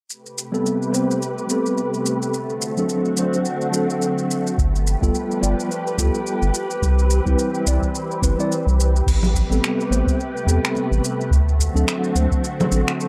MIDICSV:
0, 0, Header, 1, 5, 480
1, 0, Start_track
1, 0, Key_signature, 0, "minor"
1, 0, Tempo, 560748
1, 84, Time_signature, 4, 2, 24, 8
1, 11198, End_track
2, 0, Start_track
2, 0, Title_t, "String machine"
2, 0, Program_c, 0, 50
2, 85, Note_on_c, 0, 67, 75
2, 86, Note_on_c, 0, 48, 68
2, 86, Note_on_c, 0, 71, 71
2, 87, Note_on_c, 0, 57, 64
2, 1985, Note_off_c, 0, 67, 0
2, 1986, Note_off_c, 0, 48, 0
2, 1986, Note_off_c, 0, 71, 0
2, 2001, Note_on_c, 0, 60, 66
2, 2003, Note_on_c, 0, 50, 73
2, 2003, Note_on_c, 0, 66, 86
2, 3903, Note_off_c, 0, 60, 0
2, 3904, Note_off_c, 0, 50, 0
2, 3904, Note_off_c, 0, 66, 0
2, 3924, Note_on_c, 0, 71, 73
2, 3925, Note_on_c, 0, 67, 81
2, 3927, Note_on_c, 0, 53, 73
2, 5571, Note_off_c, 0, 57, 0
2, 5589, Note_off_c, 0, 53, 0
2, 5600, Note_on_c, 0, 60, 62
2, 5601, Note_on_c, 0, 52, 75
2, 7730, Note_off_c, 0, 71, 0
2, 7731, Note_off_c, 0, 67, 0
2, 7740, Note_off_c, 0, 60, 0
2, 7741, Note_off_c, 0, 52, 0
2, 7764, Note_on_c, 0, 57, 74
2, 7764, Note_on_c, 0, 71, 67
2, 7766, Note_on_c, 0, 48, 78
2, 7767, Note_on_c, 0, 67, 84
2, 9665, Note_off_c, 0, 71, 0
2, 9666, Note_off_c, 0, 48, 0
2, 9666, Note_off_c, 0, 67, 0
2, 9689, Note_on_c, 0, 60, 69
2, 9691, Note_on_c, 0, 50, 73
2, 9691, Note_on_c, 0, 66, 87
2, 11198, Note_off_c, 0, 50, 0
2, 11198, Note_off_c, 0, 57, 0
2, 11198, Note_off_c, 0, 60, 0
2, 11198, Note_off_c, 0, 66, 0
2, 11198, End_track
3, 0, Start_track
3, 0, Title_t, "Tine electric piano"
3, 0, Program_c, 1, 4
3, 445, Note_on_c, 1, 55, 87
3, 450, Note_on_c, 1, 59, 76
3, 458, Note_on_c, 1, 60, 74
3, 463, Note_on_c, 1, 69, 94
3, 771, Note_off_c, 1, 55, 0
3, 773, Note_off_c, 1, 59, 0
3, 778, Note_off_c, 1, 60, 0
3, 780, Note_off_c, 1, 69, 0
3, 788, Note_on_c, 1, 55, 69
3, 792, Note_on_c, 1, 59, 64
3, 797, Note_on_c, 1, 60, 58
3, 805, Note_on_c, 1, 72, 73
3, 1024, Note_off_c, 1, 55, 0
3, 1027, Note_off_c, 1, 59, 0
3, 1029, Note_off_c, 1, 60, 0
3, 1033, Note_off_c, 1, 72, 0
3, 1258, Note_on_c, 1, 55, 70
3, 1273, Note_on_c, 1, 59, 64
3, 1285, Note_on_c, 1, 60, 61
3, 1296, Note_on_c, 1, 69, 76
3, 1979, Note_off_c, 1, 55, 0
3, 1986, Note_off_c, 1, 59, 0
3, 1992, Note_off_c, 1, 60, 0
3, 1998, Note_off_c, 1, 69, 0
3, 2370, Note_on_c, 1, 54, 82
3, 2379, Note_on_c, 1, 60, 75
3, 2385, Note_on_c, 1, 62, 76
3, 2392, Note_on_c, 1, 69, 95
3, 2694, Note_off_c, 1, 54, 0
3, 2698, Note_off_c, 1, 60, 0
3, 2701, Note_off_c, 1, 62, 0
3, 2704, Note_off_c, 1, 69, 0
3, 2711, Note_on_c, 1, 54, 65
3, 2717, Note_on_c, 1, 60, 61
3, 2725, Note_on_c, 1, 62, 62
3, 2728, Note_on_c, 1, 72, 76
3, 2946, Note_off_c, 1, 54, 0
3, 2949, Note_off_c, 1, 60, 0
3, 2953, Note_off_c, 1, 62, 0
3, 2955, Note_off_c, 1, 72, 0
3, 3183, Note_on_c, 1, 54, 69
3, 3195, Note_on_c, 1, 60, 62
3, 3210, Note_on_c, 1, 62, 65
3, 3222, Note_on_c, 1, 69, 73
3, 3901, Note_off_c, 1, 54, 0
3, 3907, Note_off_c, 1, 60, 0
3, 3915, Note_off_c, 1, 62, 0
3, 3921, Note_off_c, 1, 69, 0
3, 4290, Note_on_c, 1, 55, 91
3, 4296, Note_on_c, 1, 59, 78
3, 4303, Note_on_c, 1, 65, 78
3, 4308, Note_on_c, 1, 69, 97
3, 4614, Note_off_c, 1, 55, 0
3, 4617, Note_off_c, 1, 59, 0
3, 4620, Note_off_c, 1, 65, 0
3, 4623, Note_off_c, 1, 69, 0
3, 4629, Note_on_c, 1, 55, 67
3, 4635, Note_on_c, 1, 59, 67
3, 4641, Note_on_c, 1, 65, 64
3, 4649, Note_on_c, 1, 74, 76
3, 4865, Note_off_c, 1, 55, 0
3, 4868, Note_off_c, 1, 59, 0
3, 4871, Note_off_c, 1, 65, 0
3, 4875, Note_off_c, 1, 74, 0
3, 5114, Note_on_c, 1, 55, 69
3, 5120, Note_on_c, 1, 59, 61
3, 5128, Note_on_c, 1, 65, 65
3, 5136, Note_on_c, 1, 69, 81
3, 5587, Note_off_c, 1, 55, 0
3, 5590, Note_off_c, 1, 59, 0
3, 5594, Note_off_c, 1, 65, 0
3, 5598, Note_off_c, 1, 69, 0
3, 6209, Note_on_c, 1, 55, 87
3, 6216, Note_on_c, 1, 60, 84
3, 6223, Note_on_c, 1, 64, 83
3, 6228, Note_on_c, 1, 71, 99
3, 6533, Note_off_c, 1, 55, 0
3, 6537, Note_off_c, 1, 60, 0
3, 6540, Note_off_c, 1, 64, 0
3, 6543, Note_off_c, 1, 71, 0
3, 6556, Note_on_c, 1, 55, 70
3, 6561, Note_on_c, 1, 60, 65
3, 6567, Note_on_c, 1, 64, 60
3, 6574, Note_on_c, 1, 74, 78
3, 6789, Note_off_c, 1, 55, 0
3, 6791, Note_off_c, 1, 60, 0
3, 6794, Note_off_c, 1, 64, 0
3, 6797, Note_off_c, 1, 74, 0
3, 7030, Note_on_c, 1, 55, 84
3, 7037, Note_on_c, 1, 60, 80
3, 7043, Note_on_c, 1, 64, 80
3, 7051, Note_on_c, 1, 71, 92
3, 7142, Note_off_c, 1, 55, 0
3, 7146, Note_off_c, 1, 60, 0
3, 7149, Note_off_c, 1, 64, 0
3, 7152, Note_off_c, 1, 71, 0
3, 7176, Note_on_c, 1, 55, 86
3, 7181, Note_on_c, 1, 60, 78
3, 7188, Note_on_c, 1, 64, 78
3, 7193, Note_on_c, 1, 74, 95
3, 7306, Note_off_c, 1, 55, 0
3, 7308, Note_off_c, 1, 60, 0
3, 7312, Note_off_c, 1, 64, 0
3, 7314, Note_off_c, 1, 74, 0
3, 8130, Note_on_c, 1, 55, 88
3, 8137, Note_on_c, 1, 59, 78
3, 8143, Note_on_c, 1, 60, 82
3, 8151, Note_on_c, 1, 69, 92
3, 8454, Note_off_c, 1, 55, 0
3, 8457, Note_off_c, 1, 59, 0
3, 8460, Note_off_c, 1, 60, 0
3, 8464, Note_off_c, 1, 69, 0
3, 8469, Note_on_c, 1, 55, 70
3, 8475, Note_on_c, 1, 59, 63
3, 8483, Note_on_c, 1, 60, 64
3, 8490, Note_on_c, 1, 72, 83
3, 8705, Note_off_c, 1, 55, 0
3, 8708, Note_off_c, 1, 59, 0
3, 8712, Note_off_c, 1, 60, 0
3, 8716, Note_off_c, 1, 72, 0
3, 8939, Note_on_c, 1, 55, 70
3, 8954, Note_on_c, 1, 59, 64
3, 8967, Note_on_c, 1, 60, 66
3, 8978, Note_on_c, 1, 69, 79
3, 9660, Note_off_c, 1, 55, 0
3, 9667, Note_off_c, 1, 59, 0
3, 9673, Note_off_c, 1, 60, 0
3, 9679, Note_off_c, 1, 69, 0
3, 10048, Note_on_c, 1, 54, 86
3, 10056, Note_on_c, 1, 60, 76
3, 10060, Note_on_c, 1, 62, 83
3, 10069, Note_on_c, 1, 69, 92
3, 10373, Note_off_c, 1, 54, 0
3, 10377, Note_off_c, 1, 60, 0
3, 10379, Note_off_c, 1, 62, 0
3, 10383, Note_off_c, 1, 69, 0
3, 10399, Note_on_c, 1, 54, 67
3, 10403, Note_on_c, 1, 60, 64
3, 10410, Note_on_c, 1, 62, 64
3, 10418, Note_on_c, 1, 72, 79
3, 10630, Note_off_c, 1, 54, 0
3, 10632, Note_off_c, 1, 60, 0
3, 10635, Note_off_c, 1, 62, 0
3, 10639, Note_off_c, 1, 72, 0
3, 10865, Note_on_c, 1, 54, 71
3, 10881, Note_on_c, 1, 60, 70
3, 10891, Note_on_c, 1, 62, 66
3, 10904, Note_on_c, 1, 69, 81
3, 11198, Note_off_c, 1, 54, 0
3, 11198, Note_off_c, 1, 60, 0
3, 11198, Note_off_c, 1, 62, 0
3, 11198, Note_off_c, 1, 69, 0
3, 11198, End_track
4, 0, Start_track
4, 0, Title_t, "Analog synth bass"
4, 0, Program_c, 2, 38
4, 3922, Note_on_c, 2, 31, 101
4, 4245, Note_off_c, 2, 31, 0
4, 4300, Note_on_c, 2, 31, 76
4, 4377, Note_off_c, 2, 31, 0
4, 4644, Note_on_c, 2, 31, 77
4, 4747, Note_off_c, 2, 31, 0
4, 5121, Note_on_c, 2, 38, 69
4, 5226, Note_off_c, 2, 38, 0
4, 5496, Note_on_c, 2, 31, 87
4, 5575, Note_off_c, 2, 31, 0
4, 5841, Note_on_c, 2, 36, 97
4, 6165, Note_off_c, 2, 36, 0
4, 6219, Note_on_c, 2, 36, 78
4, 6297, Note_off_c, 2, 36, 0
4, 6563, Note_on_c, 2, 36, 78
4, 6667, Note_off_c, 2, 36, 0
4, 7040, Note_on_c, 2, 31, 73
4, 7145, Note_off_c, 2, 31, 0
4, 7419, Note_on_c, 2, 36, 93
4, 7721, Note_off_c, 2, 36, 0
4, 7762, Note_on_c, 2, 33, 98
4, 8085, Note_off_c, 2, 33, 0
4, 8137, Note_on_c, 2, 33, 75
4, 8216, Note_off_c, 2, 33, 0
4, 8479, Note_on_c, 2, 33, 75
4, 8585, Note_off_c, 2, 33, 0
4, 8959, Note_on_c, 2, 40, 72
4, 9065, Note_off_c, 2, 40, 0
4, 9343, Note_on_c, 2, 33, 94
4, 9419, Note_off_c, 2, 33, 0
4, 9682, Note_on_c, 2, 38, 91
4, 10005, Note_off_c, 2, 38, 0
4, 10060, Note_on_c, 2, 38, 72
4, 10137, Note_off_c, 2, 38, 0
4, 10405, Note_on_c, 2, 38, 81
4, 10507, Note_off_c, 2, 38, 0
4, 10886, Note_on_c, 2, 33, 75
4, 10988, Note_off_c, 2, 33, 0
4, 11198, End_track
5, 0, Start_track
5, 0, Title_t, "Drums"
5, 86, Note_on_c, 9, 82, 38
5, 172, Note_off_c, 9, 82, 0
5, 224, Note_on_c, 9, 82, 19
5, 310, Note_off_c, 9, 82, 0
5, 326, Note_on_c, 9, 82, 62
5, 411, Note_off_c, 9, 82, 0
5, 466, Note_on_c, 9, 82, 28
5, 552, Note_off_c, 9, 82, 0
5, 567, Note_on_c, 9, 82, 38
5, 652, Note_off_c, 9, 82, 0
5, 705, Note_on_c, 9, 82, 19
5, 791, Note_off_c, 9, 82, 0
5, 806, Note_on_c, 9, 82, 68
5, 891, Note_off_c, 9, 82, 0
5, 950, Note_on_c, 9, 82, 28
5, 1036, Note_off_c, 9, 82, 0
5, 1047, Note_on_c, 9, 82, 38
5, 1132, Note_off_c, 9, 82, 0
5, 1184, Note_on_c, 9, 82, 19
5, 1270, Note_off_c, 9, 82, 0
5, 1281, Note_on_c, 9, 82, 63
5, 1366, Note_off_c, 9, 82, 0
5, 1422, Note_on_c, 9, 82, 29
5, 1507, Note_off_c, 9, 82, 0
5, 1521, Note_on_c, 9, 82, 39
5, 1606, Note_off_c, 9, 82, 0
5, 1660, Note_on_c, 9, 82, 19
5, 1745, Note_off_c, 9, 82, 0
5, 1763, Note_on_c, 9, 82, 63
5, 1848, Note_off_c, 9, 82, 0
5, 1903, Note_on_c, 9, 82, 28
5, 1989, Note_off_c, 9, 82, 0
5, 2001, Note_on_c, 9, 82, 44
5, 2087, Note_off_c, 9, 82, 0
5, 2137, Note_on_c, 9, 82, 20
5, 2223, Note_off_c, 9, 82, 0
5, 2239, Note_on_c, 9, 82, 68
5, 2325, Note_off_c, 9, 82, 0
5, 2374, Note_on_c, 9, 82, 28
5, 2459, Note_off_c, 9, 82, 0
5, 2475, Note_on_c, 9, 82, 39
5, 2561, Note_off_c, 9, 82, 0
5, 2612, Note_on_c, 9, 82, 20
5, 2698, Note_off_c, 9, 82, 0
5, 2713, Note_on_c, 9, 82, 71
5, 2799, Note_off_c, 9, 82, 0
5, 2856, Note_on_c, 9, 82, 28
5, 2942, Note_off_c, 9, 82, 0
5, 2955, Note_on_c, 9, 82, 42
5, 3041, Note_off_c, 9, 82, 0
5, 3093, Note_on_c, 9, 82, 21
5, 3178, Note_off_c, 9, 82, 0
5, 3197, Note_on_c, 9, 82, 69
5, 3283, Note_off_c, 9, 82, 0
5, 3339, Note_on_c, 9, 82, 29
5, 3424, Note_off_c, 9, 82, 0
5, 3440, Note_on_c, 9, 82, 39
5, 3526, Note_off_c, 9, 82, 0
5, 3581, Note_on_c, 9, 82, 21
5, 3666, Note_off_c, 9, 82, 0
5, 3687, Note_on_c, 9, 82, 72
5, 3773, Note_off_c, 9, 82, 0
5, 3826, Note_on_c, 9, 82, 31
5, 3912, Note_off_c, 9, 82, 0
5, 3922, Note_on_c, 9, 36, 112
5, 3930, Note_on_c, 9, 82, 43
5, 4007, Note_off_c, 9, 36, 0
5, 4016, Note_off_c, 9, 82, 0
5, 4071, Note_on_c, 9, 82, 22
5, 4156, Note_off_c, 9, 82, 0
5, 4169, Note_on_c, 9, 82, 72
5, 4254, Note_off_c, 9, 82, 0
5, 4300, Note_on_c, 9, 36, 94
5, 4309, Note_on_c, 9, 82, 29
5, 4385, Note_off_c, 9, 36, 0
5, 4395, Note_off_c, 9, 82, 0
5, 4406, Note_on_c, 9, 82, 41
5, 4492, Note_off_c, 9, 82, 0
5, 4549, Note_on_c, 9, 82, 22
5, 4634, Note_off_c, 9, 82, 0
5, 4652, Note_on_c, 9, 82, 76
5, 4737, Note_off_c, 9, 82, 0
5, 4792, Note_on_c, 9, 82, 31
5, 4877, Note_off_c, 9, 82, 0
5, 4891, Note_on_c, 9, 82, 43
5, 4976, Note_off_c, 9, 82, 0
5, 5026, Note_on_c, 9, 82, 20
5, 5111, Note_off_c, 9, 82, 0
5, 5121, Note_on_c, 9, 36, 97
5, 5125, Note_on_c, 9, 82, 77
5, 5207, Note_off_c, 9, 36, 0
5, 5211, Note_off_c, 9, 82, 0
5, 5261, Note_on_c, 9, 82, 31
5, 5347, Note_off_c, 9, 82, 0
5, 5365, Note_on_c, 9, 82, 42
5, 5450, Note_off_c, 9, 82, 0
5, 5499, Note_on_c, 9, 82, 21
5, 5584, Note_off_c, 9, 82, 0
5, 5601, Note_on_c, 9, 82, 69
5, 5687, Note_off_c, 9, 82, 0
5, 5740, Note_on_c, 9, 82, 30
5, 5826, Note_off_c, 9, 82, 0
5, 5841, Note_on_c, 9, 36, 107
5, 5846, Note_on_c, 9, 82, 41
5, 5927, Note_off_c, 9, 36, 0
5, 5932, Note_off_c, 9, 82, 0
5, 5982, Note_on_c, 9, 82, 21
5, 6067, Note_off_c, 9, 82, 0
5, 6080, Note_on_c, 9, 82, 70
5, 6166, Note_off_c, 9, 82, 0
5, 6218, Note_on_c, 9, 36, 95
5, 6221, Note_on_c, 9, 82, 31
5, 6304, Note_off_c, 9, 36, 0
5, 6306, Note_off_c, 9, 82, 0
5, 6324, Note_on_c, 9, 82, 42
5, 6409, Note_off_c, 9, 82, 0
5, 6460, Note_on_c, 9, 82, 22
5, 6545, Note_off_c, 9, 82, 0
5, 6564, Note_on_c, 9, 82, 76
5, 6650, Note_off_c, 9, 82, 0
5, 6698, Note_on_c, 9, 36, 58
5, 6702, Note_on_c, 9, 82, 30
5, 6784, Note_off_c, 9, 36, 0
5, 6788, Note_off_c, 9, 82, 0
5, 6805, Note_on_c, 9, 82, 42
5, 6891, Note_off_c, 9, 82, 0
5, 6946, Note_on_c, 9, 82, 21
5, 7031, Note_off_c, 9, 82, 0
5, 7040, Note_on_c, 9, 36, 101
5, 7047, Note_on_c, 9, 82, 69
5, 7126, Note_off_c, 9, 36, 0
5, 7133, Note_off_c, 9, 82, 0
5, 7189, Note_on_c, 9, 82, 32
5, 7275, Note_off_c, 9, 82, 0
5, 7292, Note_on_c, 9, 82, 39
5, 7378, Note_off_c, 9, 82, 0
5, 7434, Note_on_c, 9, 82, 22
5, 7520, Note_off_c, 9, 82, 0
5, 7535, Note_on_c, 9, 82, 75
5, 7620, Note_off_c, 9, 82, 0
5, 7671, Note_on_c, 9, 82, 31
5, 7757, Note_off_c, 9, 82, 0
5, 7761, Note_on_c, 9, 36, 110
5, 7772, Note_on_c, 9, 49, 85
5, 7774, Note_on_c, 9, 82, 43
5, 7846, Note_off_c, 9, 36, 0
5, 7858, Note_off_c, 9, 49, 0
5, 7859, Note_off_c, 9, 82, 0
5, 7899, Note_on_c, 9, 64, 77
5, 7910, Note_on_c, 9, 82, 22
5, 7985, Note_off_c, 9, 64, 0
5, 7995, Note_off_c, 9, 82, 0
5, 8001, Note_on_c, 9, 36, 58
5, 8011, Note_on_c, 9, 82, 67
5, 8087, Note_off_c, 9, 36, 0
5, 8097, Note_off_c, 9, 82, 0
5, 8149, Note_on_c, 9, 82, 30
5, 8235, Note_off_c, 9, 82, 0
5, 8252, Note_on_c, 9, 26, 74
5, 8253, Note_on_c, 9, 82, 40
5, 8337, Note_off_c, 9, 26, 0
5, 8339, Note_off_c, 9, 82, 0
5, 8393, Note_on_c, 9, 82, 20
5, 8479, Note_off_c, 9, 82, 0
5, 8493, Note_on_c, 9, 63, 72
5, 8497, Note_on_c, 9, 82, 76
5, 8579, Note_off_c, 9, 63, 0
5, 8583, Note_off_c, 9, 82, 0
5, 8619, Note_on_c, 9, 36, 94
5, 8631, Note_on_c, 9, 82, 30
5, 8705, Note_off_c, 9, 36, 0
5, 8717, Note_off_c, 9, 82, 0
5, 8735, Note_on_c, 9, 82, 39
5, 8820, Note_off_c, 9, 82, 0
5, 8877, Note_on_c, 9, 82, 20
5, 8962, Note_off_c, 9, 82, 0
5, 8976, Note_on_c, 9, 82, 69
5, 9062, Note_off_c, 9, 82, 0
5, 9115, Note_on_c, 9, 26, 74
5, 9116, Note_on_c, 9, 82, 29
5, 9200, Note_off_c, 9, 26, 0
5, 9202, Note_off_c, 9, 82, 0
5, 9203, Note_on_c, 9, 63, 59
5, 9214, Note_on_c, 9, 82, 38
5, 9289, Note_off_c, 9, 63, 0
5, 9300, Note_off_c, 9, 82, 0
5, 9353, Note_on_c, 9, 82, 22
5, 9439, Note_off_c, 9, 82, 0
5, 9454, Note_on_c, 9, 82, 70
5, 9540, Note_off_c, 9, 82, 0
5, 9595, Note_on_c, 9, 82, 33
5, 9680, Note_off_c, 9, 82, 0
5, 9683, Note_on_c, 9, 36, 113
5, 9696, Note_on_c, 9, 82, 44
5, 9769, Note_off_c, 9, 36, 0
5, 9782, Note_off_c, 9, 82, 0
5, 9833, Note_on_c, 9, 82, 22
5, 9918, Note_off_c, 9, 82, 0
5, 9924, Note_on_c, 9, 36, 57
5, 9935, Note_on_c, 9, 82, 75
5, 10010, Note_off_c, 9, 36, 0
5, 10020, Note_off_c, 9, 82, 0
5, 10072, Note_on_c, 9, 82, 30
5, 10158, Note_off_c, 9, 82, 0
5, 10169, Note_on_c, 9, 26, 74
5, 10171, Note_on_c, 9, 82, 43
5, 10255, Note_off_c, 9, 26, 0
5, 10256, Note_off_c, 9, 82, 0
5, 10306, Note_on_c, 9, 82, 22
5, 10391, Note_off_c, 9, 82, 0
5, 10408, Note_on_c, 9, 82, 74
5, 10409, Note_on_c, 9, 63, 83
5, 10494, Note_off_c, 9, 63, 0
5, 10494, Note_off_c, 9, 82, 0
5, 10543, Note_on_c, 9, 36, 105
5, 10547, Note_on_c, 9, 82, 32
5, 10629, Note_off_c, 9, 36, 0
5, 10633, Note_off_c, 9, 82, 0
5, 10651, Note_on_c, 9, 82, 45
5, 10736, Note_off_c, 9, 82, 0
5, 10785, Note_on_c, 9, 63, 58
5, 10788, Note_on_c, 9, 82, 21
5, 10791, Note_on_c, 9, 64, 94
5, 10871, Note_off_c, 9, 63, 0
5, 10873, Note_off_c, 9, 82, 0
5, 10877, Note_off_c, 9, 64, 0
5, 10887, Note_on_c, 9, 82, 72
5, 10972, Note_off_c, 9, 82, 0
5, 11025, Note_on_c, 9, 26, 74
5, 11027, Note_on_c, 9, 82, 30
5, 11111, Note_off_c, 9, 26, 0
5, 11112, Note_off_c, 9, 82, 0
5, 11132, Note_on_c, 9, 82, 40
5, 11198, Note_off_c, 9, 82, 0
5, 11198, End_track
0, 0, End_of_file